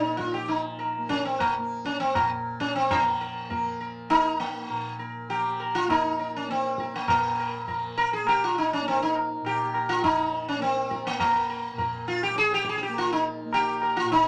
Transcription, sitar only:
0.00 0.17 D#4 medium
0.17 0.32 F4 medium
0.34 0.48 G4 medium
0.48 0.63 D#4 medium
0.79 1.07 A#4 soft
1.09 1.25 C#4 medium
1.25 1.41 C4 medium
1.40 1.54 A#3 medium
1.85 2.00 C#4 medium
2.00 2.14 C4 medium
2.15 2.29 A#3 medium
2.60 2.75 C#4 medium
2.76 2.91 C4 medium
2.91 3.77 A#3 medium
3.21 3.49 A#4 soft
3.50 3.78 A#4 soft
3.81 4.08 A#4 soft
4.10 4.38 D#4 loud
4.40 4.96 A#3 medium
4.99 5.27 A#4 soft
5.30 5.76 G4 medium
5.60 5.88 A#4 soft
5.75 5.90 F4 medium
5.90 6.36 D#4 medium
6.19 6.47 A#4 soft
6.36 6.50 C#4 medium
6.51 6.96 C4 medium
6.80 7.07 A#4 soft
6.96 7.09 A#3 medium
7.10 8.01 A#3 medium
7.39 7.66 A#4 soft
7.68 7.95 A#4 soft
7.97 8.13 A#4 medium
8.13 8.28 G#4 medium
8.29 8.43 G4 loud
8.44 8.58 F4 medium
8.58 8.72 D#4 medium
8.73 8.87 C#4 medium
8.88 9.02 C4 medium
9.02 9.15 D#4 medium
9.46 9.91 G4 medium
9.75 10.02 A#4 soft
9.89 10.03 F4 medium
10.04 10.48 D#4 medium
10.48 10.61 C#4 medium
10.62 11.07 C4 medium
10.90 11.18 A#4 soft
11.07 11.19 A#3 medium
11.20 12.11 A#3 medium
11.50 11.77 A#4 soft
11.78 12.06 A#4 soft
12.08 12.23 F4 medium
12.23 12.37 G4 loud
12.38 12.52 G#4 loud
12.54 12.68 G4 loud
12.69 12.76 G#4 medium
12.78 12.81 G#4 medium
12.83 12.97 G4 medium
12.98 13.12 F4 loud
13.12 13.25 D#4 medium
13.54 13.98 G4 loud
13.83 14.09 A#4 soft
13.97 14.10 F4 medium
14.12 14.28 D#4 loud

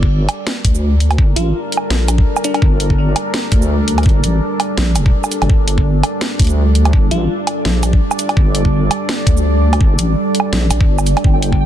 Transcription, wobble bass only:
0.00 0.28 G1 loud
0.65 1.17 D2 medium
1.18 1.35 G1 loud
1.36 1.53 A1 loud
1.90 2.25 A#1 medium
2.62 3.15 G1 loud
3.52 4.05 D2 medium
4.06 4.22 G1 loud
4.24 4.41 A1 loud
4.78 4.97 A#1 loud
4.96 5.12 F1 medium
5.42 5.49 G1 medium
5.49 6.02 G1 loud
6.40 6.92 D2 medium
6.93 7.10 G1 loud
7.11 7.28 A1 loud
7.65 8.00 A#1 loud
8.37 8.90 G1 loud
9.27 9.80 D2 medium
9.81 9.97 G1 loud
9.99 10.15 A1 loud
10.53 10.70 A#1 loud
10.70 10.82 A#1 loud
10.81 11.15 G1 medium
11.24 11.66 G1 loud

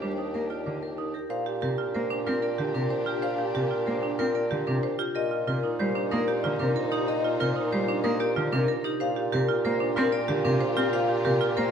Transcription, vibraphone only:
0.02 0.23 C5 medium
0.34 0.55 A#4 medium
0.50 0.71 D5 medium
0.82 1.03 A#4 medium
1.15 1.35 G4 medium
1.30 1.51 F5 medium
1.62 1.83 A#4 medium
1.94 2.15 C5 medium
2.27 2.48 A#4 medium
2.43 2.64 D5 medium
2.75 2.96 A#4 medium
3.07 3.28 G4 medium
3.23 3.44 F5 medium
3.55 3.76 A#4 medium
3.86 4.08 C5 medium
4.19 4.40 A#4 loud
4.35 4.56 D5 medium
4.67 4.88 A#4 medium
4.99 5.20 G4 medium
5.16 5.36 D#5 medium
5.48 5.68 A#4 medium
5.80 6.01 C5 medium
6.11 6.32 A#4 medium
6.28 6.48 D5 medium
6.59 6.81 A#4 medium
6.92 7.13 G4 medium
7.08 7.29 D#5 loud
7.40 7.61 A#4 medium
7.73 7.93 C5 medium
8.04 8.25 A#4 loud
8.20 8.41 D5 medium
8.53 8.73 A#4 loud
8.85 9.05 G4 medium
9.01 9.21 F5 loud
9.33 9.53 A#4 medium
9.65 9.86 C5 medium
9.97 10.18 A#4 loud
10.12 10.33 D5 medium
10.45 10.66 A#4 medium
10.77 10.98 G4 medium
10.93 11.14 F5 loud
11.25 11.46 A#4 medium
11.57 11.71 C5 medium

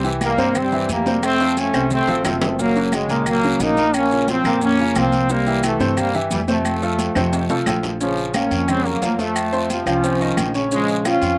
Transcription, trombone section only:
0.23 0.54 G3 medium
0.23 0.54 A#3 loud
0.57 0.90 G3 medium
0.57 0.90 C4 loud
0.91 1.22 G3 medium
0.91 1.22 A#3 medium
1.25 1.55 A3 medium
1.25 1.56 C4 loud
1.58 1.91 A3 medium
1.58 1.92 C#4 loud
1.92 2.23 A3 medium
1.92 2.23 C4 loud
2.25 2.56 A3 medium
2.25 2.57 C4 medium
2.59 2.90 F#3 medium
2.59 2.91 A#3 loud
2.94 3.27 C#3 medium
2.94 3.27 G#3 medium
3.27 3.58 F#3 medium
3.27 3.59 A#3 loud
3.61 3.94 A#3 medium
3.61 3.95 D#4 loud
3.95 4.28 A#3 medium
3.95 4.29 C#4 loud
4.30 4.60 F3 medium
4.30 4.61 C4 loud
4.63 4.94 A#3 medium
4.63 4.94 C#4 loud
4.96 5.30 F3 medium
4.96 5.30 C4 loud
5.31 5.64 G3 medium
5.31 5.64 A#3 loud
5.64 5.95 E3 medium
5.64 5.95 A3 medium
5.98 6.15 G3 medium
5.98 6.15 A#3 medium
6.33 6.40 E3 medium
6.33 6.40 G3 medium
6.50 7.63 F3 medium
6.50 7.64 A3 medium
8.01 8.33 C#3 medium
8.01 8.32 F3 medium
8.35 8.69 A#3 medium
8.35 8.69 C#4 medium
8.69 8.86 G#3 medium
8.69 8.86 C4 loud
8.85 9.20 F#3 medium
8.85 9.19 A#3 medium
9.20 9.70 F3 medium
9.20 9.70 A3 loud
9.71 9.86 C3 medium
9.71 9.86 F3 medium
9.88 10.51 F3 loud
9.88 10.51 C#4 medium
10.73 11.04 F3 medium
10.73 11.04 G#3 loud
11.06 11.38 C#4 medium
11.06 11.38 F4 loud

